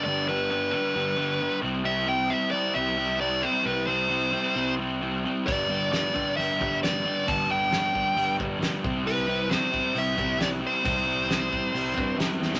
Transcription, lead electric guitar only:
X:1
M:4/4
L:1/8
Q:1/4=134
K:Clyd
V:1 name="Lead electric guitar"
d B B B4 z | e g e d e2 d c | B c4 z3 | d2 d2 e2 d2 |
a g4 z3 | B2 c2 e2 d c- | c6 z2 |]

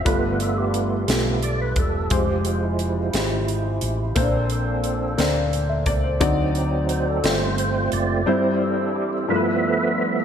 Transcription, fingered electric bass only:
X:1
M:6/8
L:1/8
Q:3/8=58
K:Gmix
V:1 name="Fingered electric bass" clef=bass
G,,,3 B,,,2 E,,, | F,,,3 _A,,,2 =A,,, | _B,,,3 D,,2 _D,, | D,,3 G,,,2 ^F,,, |
z6 |]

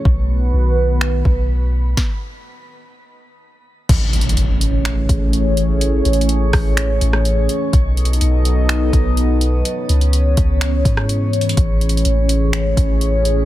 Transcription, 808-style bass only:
X:1
M:4/4
L:1/8
Q:1/4=125
K:Alyd
V:1 name="808-style bass" clef=bass
B,,,2 B,,,3 B,,,3 | z8 | A,,,2 A,,,3 A,,,3- | A,,, A,,,2 A,,,2 A,,,2 z |
B,,,2 B,,,3 B,,,3 | z C,,2 C,,2 G,,3 | A,,,2 A,,,3 A,,,3 |]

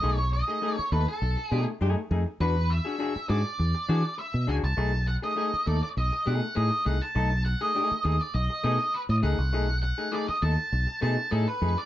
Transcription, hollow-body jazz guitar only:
X:1
M:4/4
L:1/16
Q:1/4=101
K:Bmix
V:1 name="Hollow-body jazz guitar"
[A,DG] z2 [A,DG] [A,DG] z [A,DA] z3 [A,DG] z [A,DG] z [A,DG] z | [=DFB] z2 [DFG] [DFG] z [DFG] z3 [DFG] z3 [DFG] z | [A,DG] z2 [A,DG] [A,DG] z [A,DA] z3 [A,DG] z [A,DG] z [A,DG] z | [A,DA] z2 [A,DG] [A,DG] z [A,DG] z3 [A,DG] z3 [A,DG] z |
[A,DG] z2 [A,DG] [A,DG] z [A,DA] z3 [A,DG] z [A,DG] z [A,DG] z |]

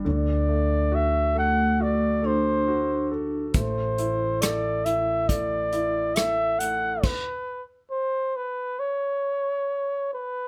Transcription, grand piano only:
X:1
M:4/4
L:1/8
Q:1/4=69
K:Ador
V:1 name="Grand piano"
D, A, F A F A F A | A, E A E A, E A A, | z8 |]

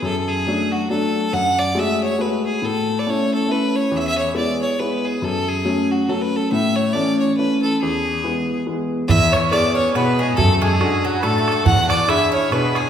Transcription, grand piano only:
X:1
M:3/4
L:1/8
Q:"Swing" 1/4=139
K:Emix
V:1 name="Grand piano"
F,,2 [F,A,D]2 [F,A,D]2 | F,,2 [G,A,F]2 [G,A,F]2 | A,,2 [A,CE]2 [A,CE]2 | E,,2 [G,B,E]2 [G,B,E]2 |
F,,2 [F,A,C]2 [F,A,C]2 | A,,2 [E,A,C]2 [E,A,C]2 | E,,2 [E,G,B,]2 [E,G,B,]2 | E,2 [B,EG]2 [B,EG]2 |
F,2 [DFA]2 [DFA]2 | E,2 [DEG]2 [DEG]2 |]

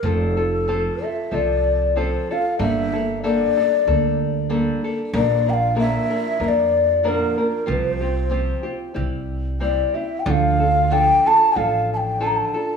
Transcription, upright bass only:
X:1
M:4/4
L:1/8
Q:"Swing" 1/4=94
K:F
V:1 name="Upright bass" clef=bass
F,,,4 C,,4 | G,,,4 D,,4 | B,,,4 F,,4 | C,,4 C,,4 |
D,,4 A,,,4 |]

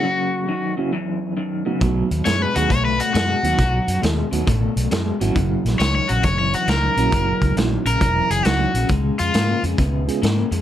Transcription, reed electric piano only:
X:1
M:4/4
L:1/8
Q:"Swing" 1/4=135
K:F#mix
V:1 name="Reed electric piano"
z3 [F,A,CEF] z3 [F,=A,B,DF] | [F,=A,B,DF] z2 [F,A,B,DG] z3 [F,A,B,DF] | z3 [F,=A,B,DF] z3 [F,^A,CEF]- | [F,A,CEF]2 z4 z [F,A,CEF]- |
[F,A,CEF]2 [F,A,CEF] z3 [F,A,CEF] z | z4 z [G,B,C^EG] z2 |]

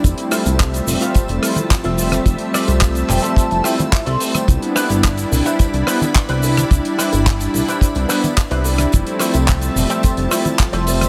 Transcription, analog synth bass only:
X:1
M:4/4
L:1/16
Q:1/4=108
K:Flyd
V:1 name="Analog synth bass" clef=bass
F,,, z2 C,,3 F,,, z F,,, F,,, z3 F,,,3 | F,,, z2 C,,3 F,,, z2 F,,, z3 C,, z2 | C,, z2 G,,,3 C,, z C,, C,, z3 C,,3 | C,, z2 G,,,3 C,, z2 C,, z3 C,,3 |
F,,, z2 C,,3 F,,, z F,,, F,,, z3 F,,,3 |]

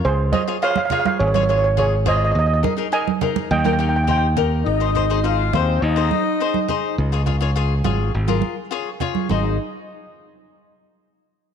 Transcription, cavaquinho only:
X:1
M:4/4
L:1/16
Q:1/4=104
K:Ab
V:1 name="Cavaquinho"
z2 [FAd] [FAd] [FAc] z [FAd]2 z [FAd] [FAd] z [FAd] z [FAd]2 | z2 [EAB] [EAB] [EAB] z [EAB]2 z [EGB] [EGB] z [EGc] z [EGB]2 | z [EAc] [EAc] [EAc] [EAc] z [EAc]2 z [EAc]2 z [EAc] z [EAc]2 | z [FAd] [FAd] [FAd] [FAd] z [FAd]2 z [FAB]2 z [FAd] z [FAd]2 |
[EAc]2 z12 z2 |]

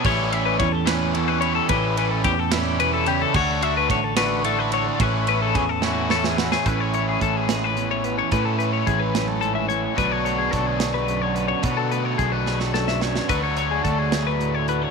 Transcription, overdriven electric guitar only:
X:1
M:6/8
L:1/8
Q:3/8=72
K:A
V:1 name="Overdriven electric guitar"
[E,=G,CE] [E,G,CE] z [E,G,CE] [E,G,CE] [E,G,CE] | [E,=G,CE] [E,G,CE] z [E,G,CE] [E,G,CE] [E,G,CE] | [D,A,DF] [D,A,DF] z [D,A,DF] [D,A,DF] [D,A,DF] | [E,A,CE] [E,A,CE] z [E,A,CE] [E,A,CE] [E,A,CE] |
[A,,E,A,CE]6 | [A,,E,A,CE]6 | [B,,F,B,DF]6 | [B,,F,B,DF]6 |
[D,F,A,DF]6 |]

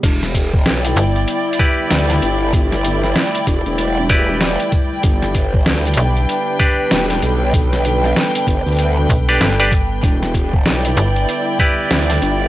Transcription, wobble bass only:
X:1
M:4/4
L:1/16
Q:"Swing 16ths" 1/4=96
K:Em
V:1 name="Wobble bass" clef=bass
E,,,4 B,,,2 z6 D,,2 G,,,2- | G,,,4 z2 E,,, E,,,6 z3 | G,,,4 D,,2 z6 E,,,2 B,,,2- | B,,,4 z2 G,,, D,,3 z6 |
E,,,4 B,,,2 z6 D,,2 G,,,2 |]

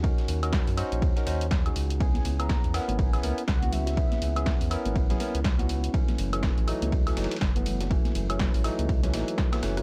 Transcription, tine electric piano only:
X:1
M:4/4
L:1/16
Q:"Swing 16ths" 1/4=122
K:Db
V:1 name="Tine electric piano"
[DEGB]3 [DEGB]3 [DEGc]3 [DEGB] [DEGc] z2 [DEGA]3 | [_CD_FA]3 [CDFA]3 [CDFB]3 [CDFA] [CDFB] z2 [CDFG]3 | [_CD_FA]3 [CDFA]3 [CDFB]3 [CDFA] [CDFB] z2 [CDFG]3 | [_F,G,=A,D]3 [F,G,A,D]3 [F,G,A,E]3 [F,G,A,D] [F,G,A,E] z2 [F,G,A,_C]3 |
[_F,G,=A,D]3 [F,G,A,D]3 [F,G,A,E]3 [F,G,A,D] [F,G,A,E]3 [F,G,A,_C] [F,G,A,D]2 |]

